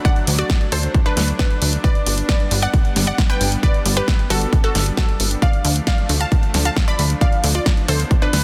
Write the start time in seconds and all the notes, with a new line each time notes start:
Already playing: F#3 A3 D4
0.05 D5 F#5, kick, closed hi-hat
0.16 closed hi-hat
0.27 D2, open hi-hat
0.38 F#4 D5, closed hi-hat
0.50 kick, snare, closed hi-hat
0.61 closed hi-hat
0.72 D2 A4 C5, open hi-hat
0.83 closed hi-hat
0.94 kick, closed hi-hat
1.06 D4 B4, closed hi-hat
1.17 D2, snare, open hi-hat
1.28 closed hi-hat
1.39 D4 B4, kick, snare, closed hi-hat
1.51 closed hi-hat
1.62 D2, open hi-hat
1.73 closed hi-hat
1.84 G3 B3 B4 D5, kick, closed hi-hat
1.95 closed hi-hat
2.06 G1, open hi-hat
2.18 closed hi-hat
2.29 B4 D5, kick, snare, closed hi-hat
2.40 closed hi-hat
2.51 G1, open hi-hat
2.62 D5 F#5, closed hi-hat
2.74 kick, closed hi-hat
2.85 closed hi-hat
2.96 G1, snare, open hi-hat
3.07 D5 F#5
3.18 kick, snare, closed hi-hat
3.30 B4 G5, closed hi-hat
3.41 G1, open hi-hat
3.52 closed hi-hat
3.63 B4 D5, kick, closed hi-hat
3.74 closed hi-hat
3.85 G1, open hi-hat
3.97 G4 B4, closed hi-hat
4.08 kick, snare, closed hi-hat
4.19 closed hi-hat
4.30 G1 F#4 A4, open hi-hat
4.42 closed hi-hat
4.53 kick, closed hi-hat
4.64 F#4 A4, closed hi-hat
4.75 G1, snare, open hi-hat
4.86 closed hi-hat
4.97 F#4 A4, kick, snare, closed hi-hat
5.09 closed hi-hat
5.20 G1, open hi-hat
5.31 closed hi-hat
5.42 F3 A3 D4 D5 F5, kick, closed hi-hat
5.53 closed hi-hat
5.65 D2, open hi-hat
5.76 closed hi-hat
5.87 D5 F5, kick, snare, closed hi-hat
5.98 closed hi-hat
6.09 D2, open hi-hat
6.21 F5 A5, closed hi-hat
6.32 kick, closed hi-hat
6.43 closed hi-hat
6.54 D2, snare, open hi-hat
6.65 F5 A5, closed hi-hat
6.77 kick, snare, closed hi-hat
6.88 D5 B5, closed hi-hat
6.99 D2, open hi-hat
7.10 closed hi-hat
7.21 B3 D5 F5, kick, closed hi-hat
7.32 closed hi-hat
7.44 D2, open hi-hat
7.55 F4 D5, closed hi-hat
7.66 kick, snare, closed hi-hat
7.77 closed hi-hat
7.88 D2 A4 C5, open hi-hat
8.00 closed hi-hat
8.11 kick, closed hi-hat
8.22 D4 B4, closed hi-hat
8.33 D2, snare, open hi-hat